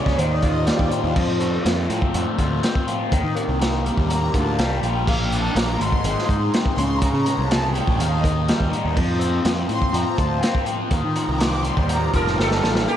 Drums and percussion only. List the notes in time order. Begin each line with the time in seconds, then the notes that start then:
0.06 kick, snare
0.19 closed hi-hat
0.43 kick, closed hi-hat
0.67 snare, closed hi-hat
0.79 kick
0.91 closed hi-hat
1.16 kick, crash
1.40 closed hi-hat
1.66 snare, closed hi-hat
1.90 closed hi-hat
2.02 kick
2.14 closed hi-hat
2.39 kick, closed hi-hat
2.63 snare, closed hi-hat
2.75 kick
2.88 closed hi-hat
3.12 kick, closed hi-hat
3.37 closed hi-hat
3.62 snare, closed hi-hat
3.86 closed hi-hat
3.98 kick
4.10 closed hi-hat
4.34 kick, closed hi-hat
4.59 snare, closed hi-hat
4.83 closed hi-hat
5.07 kick, crash
5.32 closed hi-hat
5.56 snare, closed hi-hat
5.81 closed hi-hat
5.92 kick
6.04 closed hi-hat
6.18 snare
6.29 kick, closed hi-hat
6.54 snare, closed hi-hat
6.66 kick
6.78 closed hi-hat
7.02 kick, closed hi-hat
7.26 closed hi-hat
7.51 snare, closed hi-hat
7.75 closed hi-hat
7.87 kick
8.00 closed hi-hat
8.24 kick, closed hi-hat
8.48 snare, closed hi-hat
8.60 kick
8.73 closed hi-hat
8.97 kick, crash
9.21 closed hi-hat
9.45 snare, closed hi-hat
9.69 closed hi-hat
9.82 kick
9.94 closed hi-hat
10.18 kick, closed hi-hat
10.43 snare, closed hi-hat
10.55 kick
10.66 closed hi-hat
10.91 kick, closed hi-hat
11.16 closed hi-hat
11.40 snare, closed hi-hat
11.65 closed hi-hat
11.77 kick
11.89 closed hi-hat
12.14 kick, closed hi-hat
12.27 snare
12.40 snare
12.51 snare
12.64 snare
12.75 snare